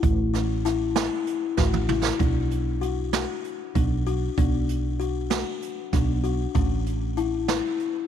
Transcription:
0.03 1.07 A1 medium
0.03 kick medium
0.03 closed hi-hat medium
0.34 0.54 C#4 medium
0.34 snare soft
0.34 closed hi-hat medium
0.65 0.85 E4 medium
0.65 snare soft
0.65 closed hi-hat medium
0.96 1.36 E4 medium
0.96 snare loud
0.96 closed hi-hat medium
1.27 closed hi-hat medium
1.57 2.10 A1 medium
1.57 1.78 F#4 medium
1.57 kick medium
1.57 snare medium
1.73 mid tom medium
1.89 2.09 E4 medium
1.89 mid tom medium
2.04 snare medium
2.19 3.24 B1 medium
2.19 2.60 D4 medium
2.19 kick loud
2.19 closed hi-hat medium
2.51 closed hi-hat medium
2.81 3.02 F#4 medium
2.81 closed hi-hat medium
3.13 3.53 F#4 medium
3.13 snare loud
3.13 closed hi-hat medium
3.44 closed hi-hat medium
3.75 4.27 B1 medium
3.75 3.95 D4 medium
3.75 kick medium
3.75 closed hi-hat medium
4.07 4.27 F#4 medium
4.07 closed hi-hat medium
4.38 5.42 B1 medium
4.38 4.78 D4 medium
4.38 kick medium
4.38 closed hi-hat medium
4.69 closed hi-hat medium
5.00 5.20 F#4 medium
5.00 closed hi-hat medium
5.30 5.71 F#4 medium
5.30 snare medium
5.30 closed hi-hat medium
5.62 closed hi-hat medium
5.93 6.45 B1 medium
5.93 6.13 D4 medium
5.93 kick medium
5.93 snare soft
5.93 closed hi-hat medium
6.24 6.44 F#4 medium
6.24 closed hi-hat medium
6.55 7.59 A1 medium
6.55 6.95 C#4 medium
6.55 kick medium
6.55 closed hi-hat medium
6.86 closed hi-hat medium
7.17 7.37 E4 medium
7.17 closed hi-hat medium
7.48 7.89 E4 medium
7.48 snare loud
7.48 closed hi-hat medium
7.79 closed hi-hat medium

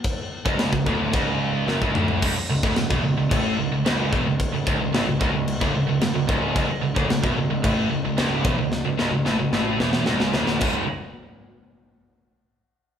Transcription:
0.04 kick loud
0.04 crash medium
0.45 0.71 C#1 loud
0.45 0.72 C#2 loud
0.45 kick loud
0.59 snare loud
0.59 crash medium
0.72 0.85 C#1 medium
0.72 0.86 C#2 medium
0.72 kick medium
0.86 1.12 D1 loud
0.86 1.13 D2 loud
0.86 kick medium
1.13 1.64 C#1 medium
1.13 1.67 C#2 loud
1.13 kick loud
1.13 crash medium
1.67 1.80 F#1 loud
1.67 1.81 F#2 loud
1.67 snare medium
1.82 1.94 C#1 medium
1.82 1.95 C#2 loud
1.82 kick medium
1.95 2.20 D1 loud
1.95 2.22 D2 loud
1.95 mid tom loud
2.08 floor tom medium
2.22 2.35 C#1 medium
2.22 2.34 C#2 loud
2.22 kick loud
2.22 crash loud
2.22 crash medium
2.35 2.48 C#1 soft
2.35 muted distorted electric guitar stroke medium
2.50 2.62 C#1 medium
2.50 2.63 C#2 medium
2.63 2.76 D1 medium
2.63 2.76 D2 loud
2.63 kick loud
2.76 2.90 C#1 medium
2.76 2.90 C#2 medium
2.76 snare loud
2.76 crash medium
2.90 3.03 E1 medium
2.90 3.03 E2 loud
2.90 kick loud
3.04 3.16 C#1 medium
3.04 3.16 C#2 medium
3.17 3.30 C#1 medium
3.17 3.30 C#2 medium
3.31 3.56 A1 medium
3.31 3.57 A2 loud
3.31 kick loud
3.31 crash medium
3.58 3.70 C#1 medium
3.58 3.71 C#2 medium
3.72 3.84 C#1 medium
3.72 3.85 C#2 medium
3.85 4.10 C#1 medium
3.85 4.12 C#2 loud
3.85 snare loud
3.85 crash medium
4.13 4.25 E1 loud
4.13 4.26 E2 loud
4.13 kick loud
4.26 4.51 C#1 medium
4.26 4.48 C#2 medium
4.40 kick loud
4.40 crash medium
4.53 4.65 C#1 medium
4.53 4.66 C#2 medium
4.67 4.79 C#1 medium
4.67 4.80 C#2 loud
4.67 kick loud
4.80 4.93 C#1 medium
4.80 4.94 C#2 medium
4.94 5.06 A1 loud
4.94 5.07 A2 loud
4.94 snare loud
4.94 crash medium
5.08 5.19 C#1 medium
5.08 5.20 C#2 medium
5.21 5.32 C#1 loud
5.21 5.33 C#2 loud
5.21 kick loud
5.34 5.59 C#1 loud
5.34 5.56 C#2 medium
5.48 crash medium
5.61 5.74 D1 loud
5.61 5.74 D2 loud
5.61 kick loud
5.75 5.87 C#1 medium
5.75 5.88 C#2 medium
5.88 6.00 C#1 medium
5.88 6.01 C#2 medium
6.01 6.14 C#1 medium
6.01 6.14 C#2 medium
6.01 snare loud
6.01 crash medium
6.15 6.27 C#1 medium
6.15 6.28 C#2 medium
6.29 6.54 C#1 loud
6.29 6.55 C#2 loud
6.29 kick loud
6.55 6.68 C#1 loud
6.55 6.68 C#2 loud
6.55 kick loud
6.55 crash medium
6.70 6.82 C#1 soft
6.70 muted distorted electric guitar stroke medium
6.82 6.96 C#1 medium
6.82 6.96 C#2 medium
6.96 7.09 D1 loud
6.96 7.09 D2 loud
6.96 kick loud
7.10 7.23 C#1 medium
7.10 7.23 C#2 medium
7.10 snare loud
7.10 crash medium
7.23 7.36 E1 loud
7.23 7.36 E2 medium
7.23 kick loud
7.38 7.49 C#1 medium
7.38 7.49 C#2 medium
7.50 7.63 C#1 medium
7.50 7.64 C#2 medium
7.64 7.89 A1 loud
7.64 7.90 A2 loud
7.64 kick loud
7.64 crash medium
7.91 8.02 C#1 medium
7.91 8.04 C#2 medium
8.04 8.16 C#1 medium
8.04 8.16 C#2 medium
8.17 8.43 C#1 loud
8.17 8.44 C#2 loud
8.17 snare loud
8.17 crash medium
8.45 8.57 E1 loud
8.45 8.58 E2 loud
8.45 kick loud
8.58 8.83 C#1 medium
8.58 8.80 C#2 medium
8.72 snare medium
8.85 8.97 C#1 medium
8.85 8.97 C#2 medium
8.98 9.11 C#1 loud
8.98 9.11 C#2 loud
8.98 snare medium
9.12 9.25 C#1 medium
9.12 9.25 C#2 medium
9.25 9.38 A1 medium
9.25 9.38 A2 loud
9.25 snare medium
9.38 9.51 C#1 medium
9.38 9.52 C#2 medium
9.52 9.78 A1 loud
9.52 9.79 A2 loud
9.52 snare medium
9.80 10.05 E1 medium
9.80 10.06 E2 loud
9.80 snare medium
9.93 snare medium
10.06 10.32 C#1 loud
10.06 10.33 C#2 loud
10.06 snare loud
10.20 snare medium
10.34 10.60 D1 loud
10.34 10.60 D2 loud
10.34 snare loud
10.47 snare medium
10.61 10.87 C#1 loud
10.61 10.83 C#2 loud
10.61 10.84 G#2 loud
10.61 10.84 C#3 loud
10.61 kick loud
10.61 crash loud

